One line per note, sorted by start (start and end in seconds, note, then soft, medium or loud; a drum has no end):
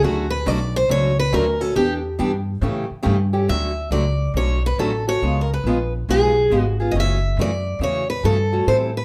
0.03 0.45 D2 medium
0.03 0.25 D3 medium
0.03 0.25 F#3 medium
0.03 0.25 A3 medium
0.03 0.25 C#4 medium
0.03 0.26 F#4 medium
0.03 0.31 F#4 medium
0.30 0.48 B4 loud
0.46 0.88 B1 loud
0.46 0.58 D3 medium
0.46 0.58 F#3 medium
0.46 0.58 A3 loud
0.46 0.58 C#4 loud
0.46 0.58 F#4 loud
0.46 0.74 D5 loud
0.76 0.90 C5 loud
0.89 1.31 C#2 medium
0.89 1.11 D3 medium
0.89 1.11 F#3 medium
0.89 1.11 A3 medium
0.89 1.11 C#4 medium
0.89 1.12 F#4 medium
0.89 1.17 C#5 loud
1.19 1.33 B4 loud
1.33 1.75 D2 loud
1.33 1.44 D3 medium
1.33 1.44 F#3 loud
1.33 1.45 A3 loud
1.33 1.45 C#4 loud
1.33 1.45 F#4 loud
1.33 1.61 A#4 medium
1.61 1.75 A3 medium
1.61 1.76 C#4 medium
1.61 1.75 F#4 medium
1.61 1.76 A4 loud
1.75 2.18 E2 medium
1.75 1.98 E3 medium
1.75 1.98 B3 medium
1.75 1.98 D4 medium
1.75 1.93 G4 medium
1.75 1.98 G4 medium
2.19 2.61 G2 loud
2.19 2.30 E3 medium
2.19 2.31 B3 medium
2.19 2.31 D4 loud
2.19 2.31 G4 loud
2.61 2.88 A2 loud
2.61 2.84 C#3 medium
2.61 2.85 E3 medium
2.61 2.84 A3 medium
2.61 2.85 C#4 medium
2.61 2.85 G4 medium
2.90 muted upright bass stroke soft
3.03 3.47 G2 loud
3.03 3.16 C#3 medium
3.03 3.16 E3 loud
3.03 3.16 A3 loud
3.03 3.16 C#4 loud
3.03 3.16 G4 loud
3.33 3.48 A3 medium
3.33 3.48 C#4 medium
3.33 3.48 G4 medium
3.48 3.90 D2 medium
3.48 3.71 D3 medium
3.48 3.70 F#3 medium
3.48 3.71 A3 medium
3.48 3.71 C#4 medium
3.48 3.71 F#4 medium
3.48 3.91 E5 loud
3.91 4.33 C#2 medium
3.91 4.03 D3 medium
3.91 4.03 F#3 medium
3.91 4.04 A3 medium
3.91 4.04 C#4 medium
3.91 4.04 F#4 medium
3.91 4.32 D5 medium
4.34 4.76 B1 medium
4.34 4.57 D3 medium
4.34 4.58 F#3 medium
4.34 4.58 A3 medium
4.34 4.58 C#4 medium
4.34 4.58 F#4 medium
4.34 4.62 C#5 medium
4.66 4.79 B4 medium
4.78 5.20 A1 medium
4.78 4.90 D3 medium
4.78 4.90 F#3 medium
4.78 4.90 A3 medium
4.78 4.90 C#4 medium
4.78 4.91 F#4 medium
4.78 5.05 A4 medium
5.07 5.22 A3 soft
5.07 5.22 C#4 soft
5.07 5.21 F#4 medium
5.07 5.39 C#5 medium
5.22 5.63 C#2 medium
5.22 5.44 C#3 medium
5.22 5.44 G#3 medium
5.22 5.44 B3 medium
5.22 5.44 F4 medium
5.22 5.44 G#4 medium
5.41 5.50 A#4 medium
5.54 5.92 B4 medium
5.64 6.06 A#1 medium
5.64 5.77 C#3 medium
5.64 5.78 G#3 medium
5.64 5.77 B3 medium
5.64 5.77 F4 medium
5.64 5.77 G#4 loud
6.09 6.49 B1 medium
6.09 6.30 C#3 medium
6.09 6.31 G#3 medium
6.09 6.31 B3 medium
6.09 6.31 F4 medium
6.09 6.31 G#4 medium
6.09 6.61 G#4 loud
6.50 6.93 G#1 medium
6.50 6.63 C#3 medium
6.50 6.63 G#3 medium
6.50 6.63 B3 medium
6.50 6.63 F4 medium
6.50 6.63 G#4 medium
6.61 6.76 F#4 loud
6.80 6.95 B3 soft
6.80 6.95 F4 medium
6.80 6.94 G#4 medium
6.91 7.36 F#1 medium
6.91 7.17 C#3 medium
6.91 7.17 E3 medium
6.91 7.17 A3 medium
6.91 6.95 D#5 medium
6.96 7.17 C#4 medium
6.96 7.17 F#4 medium
6.96 7.41 E5 loud
7.37 7.78 F#2 medium
7.37 7.50 C#3 medium
7.37 7.50 E3 medium
7.37 7.50 A3 medium
7.37 7.50 C#4 medium
7.37 7.50 F#4 medium
7.41 7.80 D5 medium
7.79 8.22 E2 medium
7.79 8.03 C#3 medium
7.79 8.03 E3 medium
7.79 8.04 A3 medium
7.79 8.03 C#4 medium
7.79 8.03 F#4 medium
7.83 8.09 C#5 medium
8.10 8.23 B4 medium
8.24 8.66 G2 medium
8.24 8.36 C#3 medium
8.24 8.36 E3 medium
8.24 8.36 A3 medium
8.24 8.36 C#4 medium
8.24 8.37 F#4 loud
8.24 8.65 A4 medium
8.53 8.67 A3 medium
8.53 8.67 C#4 medium
8.53 8.67 F#4 medium
8.67 9.05 A2 medium
8.67 8.90 E3 medium
8.67 8.90 G3 medium
8.67 8.90 C4 medium
8.67 8.90 E4 medium
8.67 8.90 A4 medium
8.67 8.75 C5 medium
8.97 9.05 B4 medium